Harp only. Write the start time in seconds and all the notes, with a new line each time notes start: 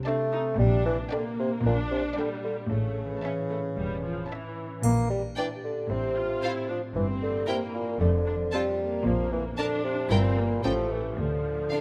Already playing: C3 A3 D4
0.05 C4
0.22 D4
0.40 C4
0.58 A#2
0.76 D4
0.93 A#3
1.11 D4
1.29 A#3
1.46 D4
1.64 A#2
1.82 A#3
1.99 D4
2.17 A#3
2.34 D4
2.52 A#3
2.69 A2
2.87 C#4
3.04 E3
3.23 C#4
3.40 E4
3.58 C#4
3.76 E3
3.95 C#4
4.13 E3
4.31 C#4
4.48 E4
4.66 C#4
4.84 A#2
5.01 D4
5.19 A#3
5.37 D4
5.55 G4
5.72 D4
5.89 A2
6.08 C4
6.25 A3
6.43 C4
6.60 F4
6.77 C4
6.95 G2
7.13 A#3
7.30 G3
7.47 A#3
7.65 E4
7.82 A#3
8.00 F2
8.18 D4
8.36 F3
8.52 D4
8.70 F4
8.87 D4
9.05 A#2
9.23 D4
9.40 F3
9.58 D4
9.75 F4
9.93 D4
10.10 G2
10.28 A#3
10.45 E4 G4
10.64 A2
10.82 A3
11.00 C#4 G4
11.18 D3
11.37 D4
11.54 A3
11.72 D4